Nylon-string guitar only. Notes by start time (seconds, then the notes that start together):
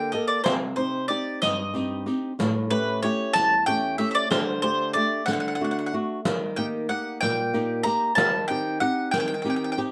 Already playing: D3 A#3 G4 A4
0.14 A#3 G4 A4
0.46 C3
0.78 C4 D#4 G4
1.10 C4 D#4 G4
1.42 G2
1.74 C4 D#4 G4
2.06 C4 D#4 G4
2.39 A2
2.70 A3 C#4 G4
3.03 A3 C#4 G4
3.36 E2
3.67 A3 C#4 G4
3.99 A3 C#4 G4
4.31 D3
4.63 A3 D4 G4
4.95 A3 D4 G4
5.28 D3
5.60 A3 D4 F#4
5.93 A3 D4 F#4
6.26 D#3
6.58 A#3 D#4 G4
6.90 A#3 D#4 G4
7.23 A#2
7.53 A#3 D#4 G4
7.85 A#3 D#4 G4
8.17 D#3
8.50 C4 D#4 G4
8.81 C4 D#4 G4
9.14 D#3
9.44 C4 D#4 G4
9.77 C4 D#4 G4